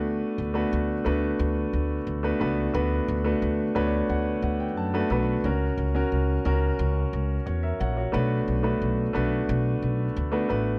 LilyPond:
<<
  \new Staff \with { instrumentName = "Grand piano" } { \time 4/4 \key d \major \tempo 4 = 89 << { r1 | r4 \tuplet 3/2 { r8. cis''16 d''8 } fis''8 fis''16 g''16 \tuplet 3/2 { a''8 a''8 b''8 } | r2. <fis' cis''>16 <ais' e''>16 <cis'' fis''>16 <fis' cis''>16~ | <fis' cis''>16 r2. r8. | } \\ { <a b d' fis' b'>8 r16 <a b d' fis' b'>8 r16 <a b d' fis' b'>4~ <a b d' fis' b'>16 r8 <a b d' fis' b'>16 <a b d' fis' b'>8 | <a b d' fis' b'>8 r16 <a b d' fis' b'>8 r16 <a b d' fis' b'>4~ <a b d' fis' b'>16 r8 <a b d' fis' b'>16 <a b d' fis' b'>8 | <cis' fis' ais'>8 r16 <cis' fis' ais'>8 r16 <cis' fis' ais'>4~ <cis' fis' ais'>16 r4 r16 | <a b d' fis' b'>8 r16 <a b d' fis' b'>8 r16 <a b d' fis' b'>4~ <a b d' fis' b'>16 r8 <a b d' fis' b'>16 <a b d' fis' b'>8 | } >> }
  \new Staff \with { instrumentName = "Upright bass" } { \clef bass \time 4/4 \key d \major d,8 d,8 d,8 d,8 d,8 d,8 d,8 cis,8 | d,8 d,8 d,8 d,8 d,8 d,8 fis,8 b,,8 | cis,8 cis,8 cis,8 cis,8 cis,8 cis,8 e,8 ais,,8 | b,,8 b,,8 b,,8 b,,8 b,,8 b,,8 d,8 a,,8 | }
>>